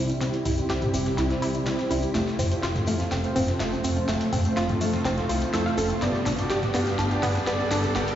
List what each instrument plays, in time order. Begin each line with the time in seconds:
Already playing: analog synth bass C2, supersaw synth C3 G3 C4 E4 C5, ambient pad C3 G3 E4 G4, riser
0.09 closed hi-hat, high conga, maracas
0.21 analog synth bass C2, supersaw synth C3 G3 C4 E4 C5, synth pluck C4, snare, closed hi-hat, tambourine, maracas
0.33 closed hi-hat, maracas
0.45 analog synth bass C2, synth pluck E4, mid tom, open hi-hat, tambourine, maracas
0.58 supersaw synth C3 G3 C4 E4 C5, closed hi-hat, maracas
0.70 analog synth bass C2, synth pluck G4, snare, closed hi-hat, tambourine, maracas
0.82 closed hi-hat, mid tom, maracas
0.94 analog synth bass G1, supersaw synth C3 G3 C4 E4 E5, synth pluck C4, open hi-hat, tambourine, maracas
1.06 snare, closed hi-hat, maracas
1.18 analog synth bass C2, synth pluck E4, snare, closed hi-hat, tambourine, maracas
1.30 supersaw synth C3 G3 C4 E4 C5, snare, closed hi-hat, maracas
1.42 analog synth bass C2, synth pluck E4, snare, open hi-hat, tambourine, maracas
1.54 closed hi-hat, maracas
1.66 analog synth bass C2, supersaw synth C3 G3 C4 E4 C5, synth pluck C4, snare, closed hi-hat, tambourine, maracas
1.79 snare, maracas
1.91 analog synth bass C2, synth pluck E4, open hi-hat, tambourine, high conga, maracas
2.02 closed hi-hat, maracas
2.14 analog synth bass F1, ambient pad F3 A3 F4, supersaw synth A3 C4 F4 C5, synth pluck A3, snare, closed hi-hat, tambourine, maracas
2.27 snare, maracas
2.39 analog synth bass F1, synth pluck C4, snare, mid tom, open hi-hat, tambourine, maracas
2.51 supersaw synth A3 C4 F4 C5, closed hi-hat, maracas
2.63 analog synth bass F1, synth pluck F4, snare, closed hi-hat, tambourine, maracas
2.75 snare, closed hi-hat, mid tom, maracas
2.87 analog synth bass F2, synth pluck A3, supersaw synth A3 C4 F4 F5, open hi-hat, tambourine, maracas
3.00 snare, closed hi-hat, maracas
3.11 analog synth bass F1, synth pluck C4, snare, closed hi-hat, tambourine, maracas
3.23 supersaw synth A3 C4 F4 C5, closed hi-hat, maracas
3.36 analog synth bass F1, synth pluck C4, mid tom, open hi-hat, tambourine, maracas
3.48 snare, closed hi-hat, high conga, maracas
3.60 analog synth bass F1, supersaw synth A3 C4 F4 C5, synth pluck A3, snare, closed hi-hat, tambourine, maracas
3.72 high conga, maracas
3.84 analog synth bass F1, synth pluck C4, open hi-hat, tambourine, maracas
3.97 closed hi-hat, high conga, maracas
4.08 analog synth bass F1, supersaw synth A3 C4 F4 C5, synth pluck A3, snare, closed hi-hat, tambourine, maracas
4.21 closed hi-hat, maracas
4.33 analog synth bass F1, synth pluck C4, mid tom, open hi-hat, tambourine, maracas
4.45 supersaw synth A3 C4 F4 C5, closed hi-hat, maracas
4.57 analog synth bass F1, synth pluck F4, snare, closed hi-hat, tambourine, maracas
4.69 closed hi-hat, mid tom, maracas
4.81 analog synth bass F2, synth pluck A3, supersaw synth A3 C4 F4 F5, open hi-hat, tambourine, maracas
4.93 snare, closed hi-hat, maracas
5.05 analog synth bass F1, synth pluck C4, snare, closed hi-hat, tambourine, maracas
5.18 supersaw synth A3 C4 F4 C5, snare, closed hi-hat, maracas
5.29 analog synth bass C2, synth pluck F4, snare, open hi-hat, tambourine, maracas
5.41 closed hi-hat, maracas
5.54 analog synth bass F2, supersaw synth A3 C4 F4 C5, synth pluck A4, snare, closed hi-hat, tambourine, maracas
5.66 synth pluck F5, snare, maracas
5.78 analog synth bass F1, synth pluck A4, open hi-hat, tambourine, high conga, maracas
5.89 closed hi-hat, maracas
6.02 analog synth bass G1, supersaw synth G2 B3 D4 G4 D5, ambient pad D3 G3 B3 G4, synth pluck B3, snare, closed hi-hat, tambourine, maracas
6.14 snare, maracas
6.26 analog synth bass G1, synth pluck D4, snare, mid tom, open hi-hat, tambourine, maracas
6.38 supersaw synth G2 B3 D4 G4 D5, closed hi-hat, maracas
6.50 analog synth bass G1, synth pluck G4, snare, closed hi-hat, tambourine, maracas
6.63 snare, closed hi-hat, mid tom, maracas
6.74 analog synth bass G2, supersaw synth G2 B3 D4 G4 F5, synth pluck B3, snare, open hi-hat, tambourine, maracas
6.87 snare, closed hi-hat, maracas
6.99 analog synth bass G1, synth pluck D4, snare, closed hi-hat, tambourine, maracas
7.11 supersaw synth G2 B3 D4 G4 D5, closed hi-hat, maracas
7.23 analog synth bass G1, synth pluck B3, snare, mid tom, open hi-hat, tambourine, maracas
7.35 snare, closed hi-hat, high conga, maracas
7.47 analog synth bass G1, supersaw synth G2 B3 D4 G4 D5, synth pluck B3, snare, closed hi-hat, tambourine, maracas
7.59 high conga, maracas
7.71 analog synth bass G1, synth pluck D4, snare, open hi-hat, tambourine, maracas
7.84 closed hi-hat, high conga, maracas
7.95 analog synth bass G1, supersaw synth G2 B3 D4 G4 D5, synth pluck B3, snare, closed hi-hat, tambourine, maracas
8.08 closed hi-hat, maracas